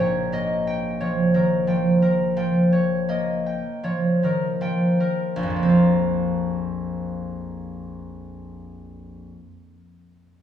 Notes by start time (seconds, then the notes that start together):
Already playing: A#1 A#2 G5
0.00 C#5
0.32 A#3 D#5
0.67 G5
1.00 F3 C#5
1.34 D#3 A#4
1.67 F3 G5
2.02 A#4
2.37 F3 G5
2.72 C#5
3.09 A#3 D#5
3.46 G5
3.83 F3 C#5
4.23 D#3 A#4
4.61 F3 G5
5.00 A#4
5.36 A#1
5.43 F2
5.50 F3
5.56 A#3
5.63 C4
5.69 F4